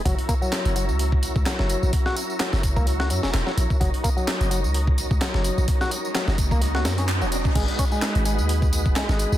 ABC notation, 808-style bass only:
X:1
M:4/4
L:1/16
Q:"Swing 16ths" 1/4=128
K:F#mix
V:1 name="808-style bass" clef=bass
F,,, z4 F,,,2 C,,4 C,, z F,,, z A,,, | z4 z F,,,2 C,,3 F,, E,,, E,,, z A,,, z | F,,, z4 F,,,2 C,,4 C,, z F,,, z A,,, | z4 z F,,,2 C,,3 F,,3 E,,,2 C,, |
G,,, z4 G,,,2 D,,4 D,,, z G,,, z B,,, |]